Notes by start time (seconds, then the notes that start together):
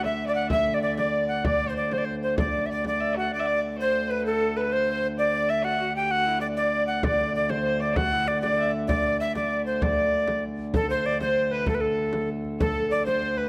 Already playing: D2
0.04 E5, frame drum
0.28 D5
0.35 F#5
0.50 E5, frame drum
0.74 D5
0.82 D5
0.97 D5, frame drum
1.28 F#5
1.45 D5, frame drum
1.69 C5
1.76 D5
1.92 C5, frame drum
1.98 D5
2.05 C5
2.23 C5
2.38 D5, frame drum
2.66 D5 E5, frame drum
2.72 D5
2.85 D5, frame drum
3.01 E5
3.17 F#4 F#5
3.31 D2 D5
3.40 E5
3.46 D5
3.80 C5
4.10 B4
4.25 A4
4.57 B4
4.61 A4 B4
4.73 C5
4.92 C5
5.18 D5
5.33 D5
5.49 E5
5.64 F#4 F#5
5.80 F#4
5.96 G4 G5
6.11 F#4 F#5
6.26 E4
6.41 D5
6.57 D5
6.87 F#5
7.03 D2 D5, frame drum
7.35 D5
7.49 C5, frame drum
7.65 C5
7.80 D5
7.96 F#4 F#5, frame drum
8.12 E4
8.28 D5
8.42 D5, frame drum
8.59 E5
8.88 D5, frame drum
9.06 D5
9.20 E5
9.35 D5, frame drum
9.66 C5
9.82 D5, frame drum
10.13 frame drum
10.28 frame drum
10.59 frame drum
10.74 D2 A4, frame drum
10.90 C5
11.06 D5
11.21 C5, frame drum
11.36 frame drum
11.49 B4 C5, frame drum
11.66 A4, frame drum
11.75 B4
11.80 A4
12.13 frame drum
12.29 frame drum
12.45 frame drum
12.60 A4, frame drum
12.91 D5
13.06 C5, frame drum
13.22 frame drum
13.37 B4, frame drum